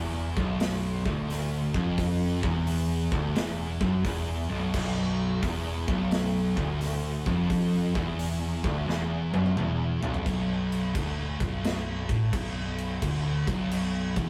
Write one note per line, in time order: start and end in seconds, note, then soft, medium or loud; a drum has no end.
0.00 0.34 E1 loud
0.00 0.38 E2 loud
0.37 1.02 B0 medium
0.37 1.06 B1 loud
0.37 kick loud
0.60 snare loud
0.60 open hi-hat medium
1.06 1.71 D1 loud
1.06 1.74 D2 loud
1.06 kick loud
1.30 snare soft
1.30 open hi-hat medium
1.74 2.40 F1 medium
1.74 2.43 F2 loud
1.74 kick loud
1.98 kick loud
1.98 open hi-hat medium
2.43 3.09 E1 loud
2.43 3.12 E2 loud
2.43 kick loud
2.67 open hi-hat medium
3.12 3.35 D1 loud
3.12 3.36 D2 loud
3.12 kick loud
3.36 3.79 E1 loud
3.36 3.81 E2 loud
3.36 snare loud
3.36 open hi-hat medium
3.81 4.04 F#1 medium
3.81 4.05 F#2 loud
3.81 kick loud
4.05 4.48 E1 loud
4.05 4.50 E2 loud
4.05 kick loud
4.05 open hi-hat medium
4.50 4.73 B0 medium
4.50 4.74 B1 loud
4.74 5.39 B0 loud
4.74 5.43 B1 loud
4.74 kick loud
4.74 crash loud
5.43 5.85 E1 loud
5.43 5.87 E2 loud
5.43 kick loud
5.43 open hi-hat medium
5.88 6.53 B0 loud
5.88 6.56 B1 loud
5.88 kick loud
6.11 snare loud
6.11 open hi-hat medium
6.57 7.22 D1 medium
6.57 7.25 D2 medium
6.57 kick loud
6.81 snare soft
6.81 open hi-hat medium
7.26 7.91 F1 loud
7.26 7.95 F2 loud
7.26 kick loud
7.50 kick loud
7.50 open hi-hat medium
7.95 8.60 E1 loud
7.95 8.63 E2 loud
7.95 kick loud
8.19 open hi-hat medium
8.64 8.86 D1 loud
8.64 8.88 D2 loud
8.64 kick loud
8.89 9.31 E1 loud
8.89 9.33 E2 loud
8.89 snare medium
9.33 9.55 F#1 medium
9.33 9.57 F#2 loud
9.33 high tom medium
9.46 high tom medium
9.57 9.99 E1 loud
9.57 10.01 E2 loud
9.57 mid tom medium
10.03 10.25 B0 medium
10.03 10.25 B1 medium
10.03 floor tom loud
10.14 floor tom loud
10.26 10.91 B0 medium
10.26 10.95 B1 loud
10.26 kick loud
10.26 crash medium
10.72 crash medium
10.95 11.37 D1 medium
10.95 11.40 D2 loud
10.95 kick loud
10.95 crash medium
11.40 12.06 B0 medium
11.40 12.09 B1 loud
11.40 kick loud
11.40 crash medium
11.64 snare loud
11.64 crash medium
12.09 12.32 A1 medium
12.09 12.33 A2 medium
12.09 kick loud
12.09 crash medium
12.33 12.98 B0 medium
12.33 13.02 B1 loud
12.33 kick loud
12.33 crash medium
12.78 crash medium
13.02 13.45 D1 medium
13.02 13.47 D2 loud
13.02 kick loud
13.02 crash medium
13.47 14.13 B0 medium
13.47 14.16 B1 loud
13.47 kick loud
13.47 crash medium
13.71 crash medium
14.16 14.29 E1 medium
14.16 14.29 E2 loud
14.16 kick loud
14.16 crash medium